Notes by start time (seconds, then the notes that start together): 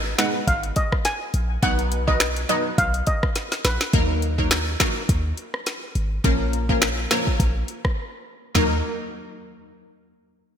Already playing: G#1
0.18 G#3 B3 D#4 B4 F#5, finger snap, snare, closed hi-hat
0.47 G#1 F5, kick, closed hi-hat
0.63 closed hi-hat
0.76 D#5, kick, closed hi-hat
0.92 kick, cross-stick
1.05 G#5, snare, closed hi-hat
1.34 A#1, closed hi-hat
1.62 B1 F#3 B3 D#4 B4 F#5, kick, closed hi-hat
1.79 closed hi-hat
1.92 closed hi-hat
2.07 F#3 B3 D#4 B4 D#5, kick
2.20 finger snap, snare, closed hi-hat
2.36 closed hi-hat
2.49 F#3 B3 D#4 B4 D#5, closed hi-hat
2.78 B1 F5, kick, closed hi-hat
2.94 closed hi-hat
3.07 D#5, kick, closed hi-hat
3.23 kick, cross-stick
3.36 snare, closed hi-hat
3.52 snare, closed hi-hat
3.65 A#1 B4, snare, closed hi-hat
3.81 snare
3.93 D#2 F#3 A#3 D#4 A#4, kick, closed hi-hat
4.22 closed hi-hat
4.38 F#3 A#3 D#4 A#4, kick
4.51 finger snap, snare, closed hi-hat
4.80 F#3 A#3 D#4 A#4, finger snap, kick, snare, closed hi-hat
5.09 D#2, kick, closed hi-hat
5.37 closed hi-hat
5.54 cross-stick
5.66 snare, closed hi-hat
5.95 G#1, closed hi-hat
6.24 A#1 F3 A#3 C#4 A#4, kick, closed hi-hat
6.53 closed hi-hat
6.69 F3 A#3 C#4 A#4, kick
6.82 finger snap, snare, closed hi-hat
7.11 F3 A#3 C#4 A#4, finger snap, snare, closed hi-hat
7.27 kick
7.40 A#1, kick, closed hi-hat
7.68 closed hi-hat
7.85 kick, cross-stick
8.55 D#2 F#3 A#3 D#4 A#4, snare, floor tom